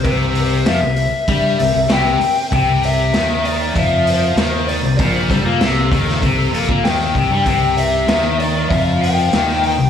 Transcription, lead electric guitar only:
0.05 C5
0.67 E5
1.92 G5
2.54 G5
2.85 E5
3.45 D5
3.78 E5
4.10 C5
4.68 D5
4.98 C5
5.31 A4
6.84 G5
7.47 G5
7.78 E5
8.40 D5
8.69 E5
9.03 G5
9.66 G5

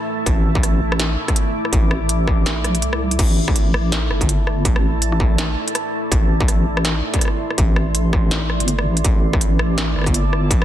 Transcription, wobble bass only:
0.26 A1
0.81 A1
1.72 A1
2.27 A1
2.64 A#1
2.82 C2
3.19 A1
3.74 A1
4.10 G1
4.65 A1
5.20 A1
6.11 A1
6.66 A1
7.58 A1
8.13 A1
8.60 G1
8.86 A1
9.04 A1
9.59 A1
9.96 G1
10.51 A1

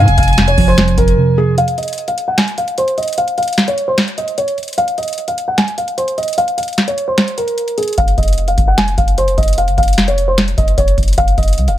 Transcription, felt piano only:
Already playing: F5
0.18 F5
0.48 C#5
0.68 C5
0.98 A#4
1.38 G#4
1.58 F5
1.78 D#5
2.08 F5
2.28 F#5
2.38 G#5
2.58 F5
2.78 C5
2.98 D#5
3.18 F5
3.38 F5
3.68 C#5
3.88 C5
4.18 D#5
4.38 C#5
4.78 F5
4.98 D#5
5.28 F5
5.48 F#5
5.58 G#5
5.78 F5
5.98 C5
6.18 D#5
6.38 F5
6.58 F5
6.88 C#5
7.08 C5
7.38 A#4
7.78 G#4
7.98 F5
8.18 D#5
8.48 F5
8.68 F#5
8.78 G#5
8.98 F5
9.18 C5
9.38 D#5
9.58 F5
9.78 F5
10.08 C#5
10.28 C5
10.58 D#5
10.78 C#5
11.18 F5
11.38 D#5
11.68 F5

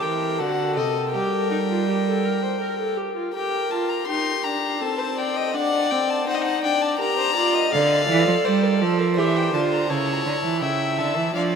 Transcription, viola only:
Already playing: G4
0.40 F#4
0.77 A4
1.14 G4
1.51 D#4
1.69 F4
1.88 G4
2.07 A4
2.25 A#4
2.43 C5
2.60 A#4
2.79 A4
2.97 G4
3.16 F4
3.34 G4
3.71 F4
4.08 D#4
4.45 D4
4.81 C4
5.54 D4
5.92 C4
6.27 D#4
6.64 D4
7.00 G4
7.36 F4
7.73 A4
9.18 G4
9.54 F4
9.90 E4
11.36 D4

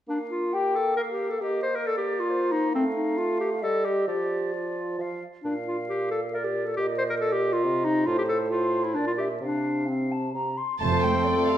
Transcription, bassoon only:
0.08 A#3
1.41 A#3
2.75 A3
3.63 G3
4.08 F3
4.98 F3
5.45 A#2
6.78 A#2
7.64 C3
8.07 A2
8.95 A#2
9.41 C3
10.34 C3
10.81 A3

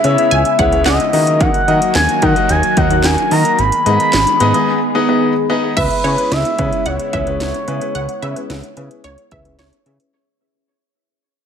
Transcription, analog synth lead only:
0.04 E5
0.86 D#5
1.41 F#5
1.95 G#5
2.23 F#5
2.50 G#5
2.77 F#5
3.04 G#5
3.31 A#5
3.59 B5
5.77 B4
6.32 E5
6.86 C#5

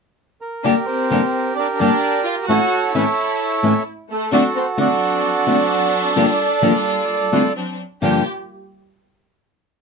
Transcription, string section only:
4.32 F#3 C4 D4
4.77 F#3 C4 D4
5.47 F#3 C4 D4
6.15 G3 A#3 F4
6.62 G3 A#3 F4
7.32 G3 A#3 F4
7.55 F#3 C4 D4
8.03 G3 A#3 F4

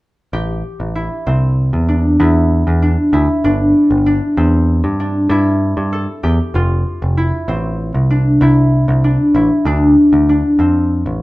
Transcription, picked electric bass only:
0.33 A1
0.80 A1
1.27 C2
1.73 E2
2.20 E2
2.67 E2
3.13 D2
3.44 G1
3.91 G1
4.37 E2
4.84 G2
5.29 G2
5.77 G2
6.24 E2
6.54 F1
7.02 F1
7.48 A1
7.94 C2
8.41 C2
8.88 C2
9.35 A1
9.65 D2
10.13 D2
10.59 F2
11.06 A1

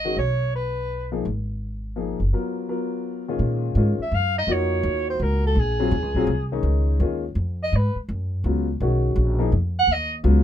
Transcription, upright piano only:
0.05 D#3 G#3 C#4 F#4
1.12 F3 A#3 D#4 G#4
1.96 F3 A#3 D#4 G#4
2.33 F#3 B3 F4 A#4
2.69 F#3 B3 F4 A#4
3.28 A#2 D#3 G#3 C#4 F4
3.77 D#3 G#3 C#4 F4
4.47 A#3 D#4 F4 F#4
5.80 F#3 C4 F4 G#4
6.16 F#3 C4 F4 G#4
6.52 D#3 G#3 C#4 D#4
7.01 D#3 G#3 C#4 F4
8.45 C#3 F#3 B3 F4
8.81 D#3 G#3 C#4 F#4
9.39 F3 A#3 D#4 G#4
10.24 C#3 F#3 B3 F4

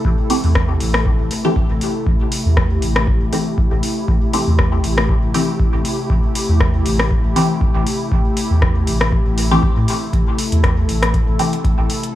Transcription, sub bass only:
0.05 A1
0.44 E2
0.81 A1
1.19 A1
1.70 A1
2.07 A1
2.45 E2
2.82 A1
3.21 A1
3.71 A1
4.08 A1
4.47 E2
4.84 A1
5.23 A1
5.73 A1
6.10 A1
6.49 E2
6.86 A1
7.24 A1
7.75 A1
8.12 A1
8.51 E2
8.87 A1
9.26 A1
9.76 A2
10.13 A1
10.52 E2
10.89 A1
11.28 A1
11.78 A1

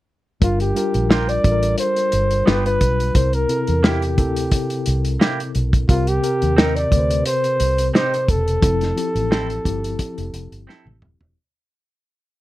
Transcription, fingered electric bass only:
0.42 G1
0.95 A#1
1.45 A1
2.13 G1
2.48 G1
2.81 B1
3.15 C2
3.68 E2
4.18 D2
4.87 C2
5.56 B1
5.89 C2
6.42 D#2
6.92 D2
7.61 C2
8.29 E1
8.63 F1
9.15 A1
9.66 G1
10.18 F1
10.34 F1
10.52 G1
10.86 A1
11.02 D#1
11.21 E1

